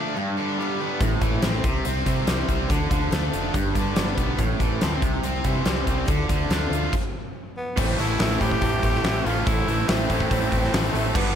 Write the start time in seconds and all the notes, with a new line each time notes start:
Already playing: D3 F3 A3 D4
0.05 D4 F4 A4
0.16 G2 G3 D4 G4 B4
0.27 D4 G4 B4
0.37 D3 G3 D4 G4 B4
0.49 D4 G4 B4
0.58 G3 B3 D4
0.62 G4 B4
0.80 G3 B3 D4 G4 B4
1.01 A1 A2 E3 A3 C4 E4 C5, kick, closed hi-hat
1.11 A3 C4 E4 C5
1.21 A1 E3 A3, kick, closed hi-hat
1.33 A3 C4 E4 C5
1.42 A1 A2 E3 A3 C4 E4 C5, snare, closed hi-hat
1.64 C2 C3 G3 C4 E4 C5, kick, closed hi-hat
1.75 G3 C4 E4 C5
1.85 C2 C4, closed hi-hat
1.96 G3 C4 E4 C5
2.06 C3 G3 C4 E4, kick, closed hi-hat
2.10 C5
2.18 G3 C4 E4 C5
2.27 C2 C3 E3 G3 C4 E4 C5, snare, closed hi-hat
2.48 C2 G3 C4 E4 C5, kick, closed hi-hat
2.60 G3 C4 E4 C5
2.69 D2 D3 A3 D4 F4 A4, kick, closed hi-hat
2.79 D4 F4 A4
2.90 D2 D3 F3, kick, closed hi-hat
3.00 D4 F4 A4
3.10 D2 D3 A3 D4 F4 A4, snare, closed hi-hat
3.32 F1 F3 A3 D4 F4 A4, closed hi-hat
3.42 D4 F4 A4
3.54 G1 G2 G3 D4 G4 B4, kick, closed hi-hat
3.64 D4 G4 B4
3.74 G2 D3 G3 D4 G4, kick, closed hi-hat
3.78 B4
3.84 D4 G4 B4
3.95 G1 G3 B3 D4 G4 B4, snare, closed hi-hat
4.16 B1 G3 B3 D4 G4 B4, kick, closed hi-hat
4.38 A1 A2 E3 A3 C4 E4 C5, kick, closed hi-hat
4.47 A3 C4 E4 C5
4.60 A1 E3 A3, kick, closed hi-hat
4.69 A3 C4 E4 C5
4.81 D2 A2 E3 A3 C4 E4 C5, snare, closed hi-hat
5.02 C2 C3 G3 C4 E4, kick, closed hi-hat
5.06 C5
5.14 G3 C4 E4 C5
5.23 C2 C4, closed hi-hat
5.35 G3 C4 E4 C5
5.44 C3 E3 G3 C4 E4, kick, closed hi-hat
5.49 C5
5.56 G3 C4 E4 C5
5.65 C2 C3 E3 G3 C4 E4 C5, snare, closed hi-hat
5.86 C2 G3 C4 E4 C5, kick, closed hi-hat
6.06 D2 D3 A3 D4 F4 A4, kick, closed hi-hat
6.17 D4 F4 A4
6.29 D2 D3 A3, kick, closed hi-hat
6.39 D4 F4 A4
6.49 D2 D3 A3 D4 F4 A4, snare, closed hi-hat
6.70 D2 A3 D4 F4 A4, closed hi-hat
6.81 D4 F4 A4
6.93 kick, crash
7.57 B3
7.77 A1 A2 E3 A3 C4 E4 A4 C5, kick, crash
7.97 A1 A2 E3 A3 C4 E4 A4, open hi-hat
8.08 A3 C4 E4 A4
8.18 A1 A2 E3 A3 C4 E4 A4, snare, open hi-hat
8.41 A1 A2 E3 A3 C4 E4 G4, kick, open hi-hat
8.51 kick
8.62 A1 A2 E3 A3 C4 E4, kick, open hi-hat
8.71 A3 C4 E4 A4
8.82 A1 A2 E3 A3 C4 E4 A4, kick, open hi-hat
8.94 snare
9.03 A1 A2 E3 A3 C4 E4 A4, snare, open hi-hat
9.25 A1 A2 E3 A3 C4 E4 F4 A4, open hi-hat
9.34 A3 C4 E4 A4
9.45 A1 A2 E3 A3 C4 E4 A4, kick, open hi-hat
9.67 A1 A2 E3 A3 C4 E4 A4, open hi-hat
9.78 A3 C4 E4 A4
9.88 A1 A2 E3 A3 C4 E4 A4, snare, open hi-hat
10.09 A1 A2 E3 A3 C4 E4, kick, open hi-hat
10.20 kick
10.30 A1 A2 E3 A3 C4 E4, kick, open hi-hat
10.40 A3 C4 E4 A4
10.50 A1 A2 E3 A3 C4 E4, kick, open hi-hat
10.55 A4
10.64 snare
10.73 A1 A2 E3 A3 C4 E4 A4, snare, open hi-hat
10.93 A1 A2 E3 A3 C4 E4 A4, open hi-hat
11.05 A3 C4 E4 A4
11.14 G1 G2 D3 G3 B3 D4 G4 B4, kick, crash